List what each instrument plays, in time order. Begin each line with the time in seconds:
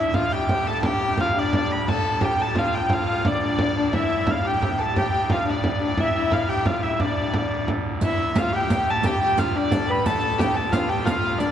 Already playing: pipe organ D2 A2, fiddle E4, hurdy-gurdy E5
0.14 fiddle F4, hurdy-gurdy F5, frame drum
0.32 fiddle G4, hurdy-gurdy G5, frame drum
0.48 fiddle G4, hurdy-gurdy G5, frame drum
0.67 fiddle A4, hurdy-gurdy A5
0.83 fiddle G4, hurdy-gurdy G5, frame drum
1.17 fiddle F4, hurdy-gurdy F5, frame drum
1.36 fiddle D4, hurdy-gurdy D5, frame drum
1.53 hurdy-gurdy D5, frame drum
1.72 hurdy-gurdy B5
1.88 fiddle A4, hurdy-gurdy A5, frame drum
2.21 fiddle G4, hurdy-gurdy G5, frame drum
2.39 fiddle A4, hurdy-gurdy A5, frame drum
2.49 fiddle G4
2.55 fiddle F4, hurdy-gurdy F5, frame drum
2.75 hurdy-gurdy G5
2.90 fiddle F4, hurdy-gurdy F5, frame drum
3.25 fiddle D4, hurdy-gurdy D5, frame drum
3.42 fiddle D4, hurdy-gurdy D5
3.59 frame drum
3.77 fiddle D4
3.93 pipe organ D2 A2, fiddle E4, hurdy-gurdy E5, frame drum
4.27 hurdy-gurdy F5, frame drum
4.43 fiddle G4, hurdy-gurdy G5, frame drum
4.61 fiddle G4, frame drum
4.78 fiddle A4, hurdy-gurdy A5
4.95 fiddle G4, hurdy-gurdy G5, frame drum
5.12 fiddle G4
5.30 fiddle F4, hurdy-gurdy F5, frame drum
5.45 fiddle D4, frame drum
5.50 hurdy-gurdy D5
5.62 fiddle E4, frame drum
5.80 fiddle D4
5.84 hurdy-gurdy D5
5.97 fiddle E4, hurdy-gurdy E5, frame drum
6.14 fiddle E4
6.31 hurdy-gurdy F5, frame drum
6.49 fiddle G4, hurdy-gurdy G5, frame drum
6.65 fiddle F4, hurdy-gurdy F5, frame drum
6.82 fiddle E4, hurdy-gurdy E5
6.92 hurdy-gurdy E5
7.00 fiddle D4, hurdy-gurdy D5, frame drum
7.34 frame drum
7.51 frame drum
7.68 frame drum
7.85 frame drum
8.01 pipe organ D2 A2, fiddle E4, hurdy-gurdy E5, riq, frame drum
8.35 fiddle F4, hurdy-gurdy F5, riq, frame drum
8.53 fiddle G4, hurdy-gurdy G5, frame drum
8.70 riq, frame drum
8.90 hurdy-gurdy A5
9.03 fiddle G4, hurdy-gurdy G5, riq, frame drum
9.22 fiddle G4
9.38 fiddle F4, hurdy-gurdy F5, riq, frame drum
9.55 fiddle D4, hurdy-gurdy D5, frame drum
9.71 fiddle A4, riq, frame drum
9.89 fiddle B4, hurdy-gurdy B5
10.06 fiddle A4, hurdy-gurdy A5, riq, frame drum
10.39 fiddle G4, hurdy-gurdy G5, riq, frame drum
10.54 fiddle A4, hurdy-gurdy A5, frame drum
10.71 fiddle F4, hurdy-gurdy F5, riq, frame drum
10.89 fiddle G4, hurdy-gurdy G5
11.05 fiddle F4, hurdy-gurdy F5, riq, frame drum
11.24 frame drum
11.38 fiddle D4, hurdy-gurdy D5, riq